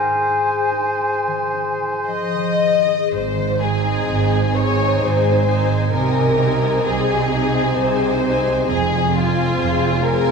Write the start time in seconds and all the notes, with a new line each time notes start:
Already playing: G#2 D#4 G#4 C5 G#5
0.15 D#4
0.44 G#4
0.71 D#4
1.00 C4
1.27 D#3
1.53 C4
1.81 D#3
2.08 F3 D#5
2.34 D#3
2.60 D#4
2.86 G#4
3.11 G#1 G#2 C5
3.35 D#3
3.60 C4 D#4 G#4 G#5
3.84 D#4
4.07 G#1 G#2 G#4
4.30 C5
4.53 C4 D#4 G#4 C#5 G#5
4.77 C5
5.00 G#1 G#2 G#4 C5
5.23 D#4
5.46 C4 D#4 G#5
5.69 D#3
5.91 C2 C3 C4 D#4 A#4 G#5
6.15 G#3
6.37 C4 D#4 G#5
6.62 D#4
6.85 C2 C3 G#4
7.08 C5
7.32 C4 D#4 G#4 G#5
7.55 C5
7.77 C2 C3 G#4 C5
8.01 D#4
8.24 C4 D#4 G#5
8.47 G#3
8.69 F1 F2 G#4
8.90 C3
9.13 C4 F4 G#5
9.36 F4
9.58 F1 F2 G#4
9.79 C5
10.01 C4 F4 G#4 A#4 G#5
10.23 C5